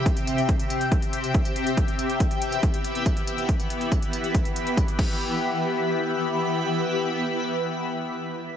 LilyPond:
<<
  \new Staff \with { instrumentName = "Ambient pad" } { \time 4/4 \key e \minor \tempo 4 = 140 << { <c c' g''>1 | <e b b''>1~ | <e b b''>2.~ <e b b''>8 <e b g' e'' b''>8~ | <e b g' e'' b''>1~ |
<e b g' e'' b''>1 | } \\ { <g' e''>1~ | <g' e''>1~ | <g' e''>2.~ <g' e''>8 r8 | r1 |
r1 | } >> }
  \new DrumStaff \with { instrumentName = "Drums" } \drummode { \time 4/4 <hh bd>16 hh16 hh16 hh16 <hh bd>16 hh16 hh16 hh16 <hh bd>16 hh16 hh16 hh16 <hh bd>16 hh16 hh16 hh16 | <hh bd>16 hh16 hh16 hh16 <hh bd>16 hh16 hh16 hh16 <hh bd>16 hh16 hh16 hh16 <hh bd>16 hh16 hh16 hh16 | <hh bd>16 hh16 hh16 hh16 <hh bd>16 hh16 hh16 hh16 <hh bd>16 hh16 hh16 hh16 <hh bd>16 hh16 <cymc bd>8 | r4 r4 r4 r4 |
r4 r4 r4 r4 | }
>>